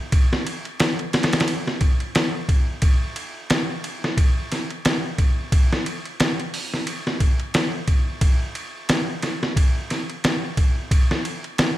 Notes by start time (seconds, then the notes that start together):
0.12 kick, ride
0.33 snare
0.47 ride
0.65 ride
0.80 snare, ride
0.99 ride
1.13 snare, ride
1.23 snare, ride
1.33 snare, ride
1.40 snare, ride
1.48 ride
1.67 snare
1.81 kick, ride
2.00 ride
2.15 snare, ride
2.49 kick, ride
2.82 kick, ride
3.16 ride
3.50 snare, ride
3.84 ride
4.04 snare
4.17 kick, ride
4.52 snare, ride
4.70 ride
4.85 snare, ride
5.18 kick, ride
5.52 kick, ride
5.73 snare
5.86 ride
6.05 ride
6.20 snare, ride
6.40 ride
6.54 open hi-hat
6.74 snare
6.87 ride
7.07 snare
7.20 kick, ride
7.40 ride
7.54 snare, ride
7.88 kick, ride
8.21 kick, ride
8.55 ride
8.89 snare, ride
9.22 snare, ride
9.43 snare
9.56 kick, ride
9.90 snare, ride
10.10 ride
10.24 snare, ride
10.57 kick, ride
10.91 kick, ride
11.11 snare
11.25 ride
11.44 ride
11.58 snare, ride